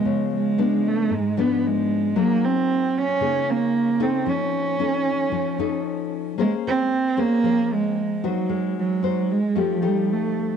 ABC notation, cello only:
X:1
M:4/4
L:1/16
Q:1/4=114
K:Db
V:1 name="Cello" clef=bass
A,2 A,4 =A,2 _A,2 _C2 A,4 | B,2 C4 D4 B,4 C2 | ^C12 z4 | A,2 C4 B,4 A,4 G,2- |
G,2 G,4 A,2 F,2 =G,2 =A,3 z |]